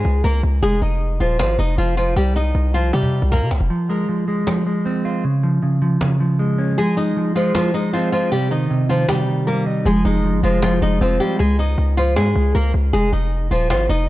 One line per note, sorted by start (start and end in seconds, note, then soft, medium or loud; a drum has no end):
0.00 0.22 G#3 medium
0.00 0.22 G#4 medium
0.05 0.23 C#2 loud
0.05 cajon slap soft
0.24 0.42 C#2 loud
0.24 0.41 A#3 medium
0.24 0.40 A#4 medium
0.24 cajon slap soft
0.43 0.62 C#2 loud
0.43 cajon slap soft
0.50 cajon slap soft
0.56 cajon slap soft
0.63 0.81 F1 loud
0.63 0.79 G#3 medium
0.63 0.79 G#4 loud
0.81 1.19 F1 loud
0.81 1.18 D#4 medium
0.81 1.18 D#5 medium
0.81 cajon slap medium
1.01 cajon slap soft
1.20 1.41 D#1 loud
1.20 1.37 F3 medium
1.20 1.37 F4 medium
1.20 cajon slap soft
1.39 1.58 G#1 loud
1.39 1.56 F3 medium
1.39 1.56 F4 medium
1.39 cajon slap loud
1.58 1.77 F1 loud
1.58 1.75 D#4 medium
1.58 1.75 D#5 medium
1.58 cajon slap soft
1.78 2.15 F1 loud
1.78 1.95 F3 medium
1.78 1.94 F4 medium
1.78 cajon slap soft
1.97 2.14 F3 medium
1.97 2.13 F4 medium
2.16 2.53 C2 loud
2.16 2.33 G3 medium
2.16 2.33 G4 loud
2.35 2.72 D#4 medium
2.35 2.72 D#5 medium
2.35 cajon slap soft
2.55 2.92 C2 loud
2.55 cajon slap soft
2.60 cajon slap soft
2.64 cajon slap soft
2.69 cajon slap soft
2.74 2.91 F3 medium
2.74 2.90 F4 medium
2.80 cajon slap soft
2.87 cajon slap soft
2.93 3.21 C3 loud
2.93 3.30 G3 medium
2.93 3.30 G4 medium
2.93 cajon slap soft
3.03 cajon bass medium
3.12 cajon slap soft
3.22 3.43 C2 loud
3.32 3.49 A#3 medium
3.32 3.48 A#4 medium
3.32 cajon bass medium
3.41 3.52 C3 loud
3.51 3.60 C2 loud
3.51 cajon slap loud
3.57 3.70 F1 loud
3.57 cajon slap soft
3.64 cajon slap soft
3.70 4.08 F3 medium
3.89 4.27 G#3 medium
3.89 cajon slap medium
4.08 4.46 F3 medium
4.08 cajon slap soft
4.27 4.65 G#3 medium
4.27 cajon slap soft
4.47 5.24 F3 medium
4.47 cajon slap loud
4.66 5.24 G#3 medium
4.66 cajon slap soft
4.85 5.24 C4 medium
4.85 cajon slap soft
5.05 5.24 F4 medium
5.05 cajon slap soft
5.24 5.61 C#3 medium
5.24 cajon slap soft
5.43 5.81 F3 medium
5.43 cajon slap soft
5.62 6.00 C#3 medium
5.62 cajon slap soft
5.82 6.19 F3 medium
5.82 cajon slap soft
5.91 cajon slap soft
6.01 6.78 C#3 medium
6.01 cajon slap loud
6.20 6.77 F3 medium
6.20 cajon slap soft
6.39 6.78 G#3 medium
6.39 cajon slap soft
6.58 6.78 C#4 medium
6.58 cajon slap soft
6.65 cajon slap soft
6.71 cajon slap soft
6.78 7.15 F3 medium
6.78 6.95 G#3 medium
6.78 6.94 G#4 loud
6.78 cajon slap soft
6.97 7.34 G#3 medium
6.97 7.33 D#4 medium
6.97 7.34 D#5 medium
6.97 cajon slap soft
7.16 7.54 F3 medium
7.16 cajon slap soft
7.35 7.52 F3 medium
7.35 7.73 G#3 medium
7.35 7.52 F4 medium
7.35 cajon slap soft
7.55 8.32 F3 medium
7.55 7.72 F3 medium
7.55 7.71 F4 medium
7.55 cajon slap loud
7.74 8.32 G#3 medium
7.74 7.90 D#4 medium
7.74 7.91 D#5 medium
7.74 cajon slap soft
7.93 8.10 F3 medium
7.93 8.32 C4 medium
7.93 8.10 F4 medium
7.93 cajon slap soft
8.12 8.29 F3 medium
8.12 8.29 F4 medium
8.12 8.32 F4 medium
8.12 cajon slap soft
8.32 8.69 C3 medium
8.32 8.48 G3 medium
8.32 8.48 G4 loud
8.32 cajon slap soft
8.51 8.88 D#3 medium
8.51 8.87 D#4 medium
8.51 8.88 D#5 medium
8.51 cajon slap medium
8.70 9.08 C3 medium
8.70 cajon slap soft
8.75 cajon slap soft
8.80 cajon slap soft
8.85 cajon slap soft
8.89 9.27 D#3 medium
8.89 9.06 F3 medium
8.89 9.06 F4 medium
8.89 cajon slap soft
8.96 cajon slap soft
9.02 cajon slap soft
9.09 9.86 C3 medium
9.09 9.45 G3 medium
9.09 9.45 G4 medium
9.09 cajon slap loud
9.28 9.85 D#3 medium
9.28 cajon slap soft
9.47 9.86 G3 medium
9.47 9.64 A#3 medium
9.47 9.63 A#4 medium
9.47 cajon slap soft
9.66 9.86 D#4 medium
9.66 cajon slap soft
9.73 cajon slap soft
9.79 cajon slap soft
9.85 10.04 F1 loud
9.85 10.23 F3 medium
9.85 10.03 G#3 medium
9.85 10.02 G#4 loud
10.05 10.35 F1 loud
10.05 10.42 G#3 medium
10.05 10.41 D#4 medium
10.05 10.41 D#5 medium
10.05 cajon slap soft
10.24 10.61 F3 medium
10.24 cajon slap soft
10.34 10.43 G1 loud
10.43 10.80 F1 loud
10.43 10.60 F3 medium
10.43 10.81 G#3 medium
10.43 10.60 F4 medium
10.43 cajon slap soft
10.62 11.39 F3 medium
10.62 10.79 F3 medium
10.62 10.79 F4 medium
10.62 cajon slap loud
10.82 11.00 F1 loud
10.82 11.40 G#3 medium
10.82 10.98 D#4 medium
10.82 10.99 D#5 medium
10.82 cajon slap soft
11.01 11.19 F1 loud
11.01 11.18 F3 medium
11.01 11.39 C4 medium
11.01 11.17 F4 medium
11.01 cajon slap soft
11.20 11.37 G3 medium
11.20 11.39 F4 medium
11.20 11.36 G4 medium
11.20 cajon slap soft
11.39 11.76 C#2 loud
11.39 11.56 G#3 medium
11.39 11.55 G#4 loud
11.58 11.95 D#4 medium
11.58 11.95 D#5 medium
11.58 cajon slap medium
11.78 12.18 C#2 loud
11.78 cajon slap soft
11.97 12.14 F3 medium
11.97 12.13 F4 medium
11.97 cajon slap soft
12.07 cajon slap soft
12.16 12.35 G#2 loud
12.16 12.53 G#3 medium
12.16 12.52 G#4 medium
12.16 cajon slap loud
12.35 12.54 C#2 loud
12.35 cajon slap soft
12.55 12.73 C#2 loud
12.55 12.71 A#3 medium
12.55 12.71 A#4 medium
12.74 12.93 C#2 loud
12.74 cajon slap soft
12.80 cajon slap soft
12.87 cajon slap soft
12.93 13.12 F1 loud
12.93 13.10 G#3 medium
12.93 13.10 G#4 loud
13.12 13.49 F1 loud
13.12 13.49 D#4 medium
13.12 13.49 D#5 medium
13.12 cajon slap soft
13.32 cajon slap soft
13.50 13.72 D#1 loud
13.50 13.68 F3 medium
13.50 13.67 F4 medium
13.50 cajon slap soft
13.70 13.88 G#1 loud
13.70 13.87 F3 medium
13.70 13.87 F4 medium
13.70 cajon slap loud
13.89 14.08 F1 loud
13.89 14.06 D#4 medium
13.89 14.06 D#5 medium
13.89 cajon slap soft